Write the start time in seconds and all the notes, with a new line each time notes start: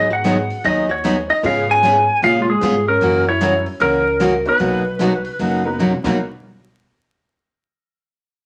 Already playing: G#2 B3 D#4 F#4 G#4
0.10 F#4 F#5
0.24 D#3 F#3 B3 D#4 G#4, snare, closed hi-hat
0.50 open hi-hat
0.64 D#2 D#3 F#3 B3 D#4 G#4 D#5, open hi-hat
0.89 F#4 C#5
1.04 D#3 F#3 B3 D#4 G#4, snare, closed hi-hat
1.30 D#4 D#5, open hi-hat
1.43 G#2 C#3 G#3 B3 C#4 F4 G#4 F5, open hi-hat
1.69 G#4 G#5
1.83 C#3 G#3 B3 F4 G#4, snare, closed hi-hat
2.22 A#2 C#3 G#3 B3 F4 G#4 F5, open hi-hat
2.39 G#3 F4
2.49 G#3 G#4
2.61 G#2 C#3 G#3 B3 F4 G#4, snare, closed hi-hat
2.88 C#4 A#4
3.01 F#2 C#3 E3 A#3 C#4 F#4, open hi-hat
3.29 E4 C#5
3.41 C#3 E3 A#3 C#4 E4 F#4 A#4, snare, closed hi-hat
3.66 open hi-hat
3.80 C#2 C#3 E3 A#3 C#4 F#4 A#4, open hi-hat
4.20 C#3 E3 A#3 C#4 F#4, snare, closed hi-hat
4.46 B3 D#4 F#4 B4 C#5, open hi-hat
4.59 B1 B2 F#3 A#3 D#4 F#4, open hi-hat
4.99 B2 F#3 A#3 D#4 F#4, snare, closed hi-hat
5.25 open hi-hat
5.39 F#1 B2 F#3 A#3 D#4 F#4, open hi-hat
5.65 B3 D#4 F#4 A#4
5.79 B2 F#3 A#3 D#4 F#4, mid tom
5.93 mid tom
6.04 B1 B2 F#3 A#3 B3 D#4 F#4 A#4, kick, snare, crash